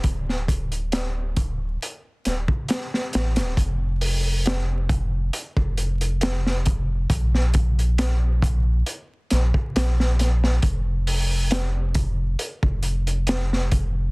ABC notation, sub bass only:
X:1
M:4/4
L:1/16
Q:"Swing 16ths" 1/4=68
K:Dm
V:1 name="Sub bass" clef=bass
D,,,8 z2 D,,, z3 A,,, D,,, | F,,,8 z F,,,6- F,,, | B,,,8 z2 B,,, z B,,,4 | F,,,8 z F,,,6- F,,, |]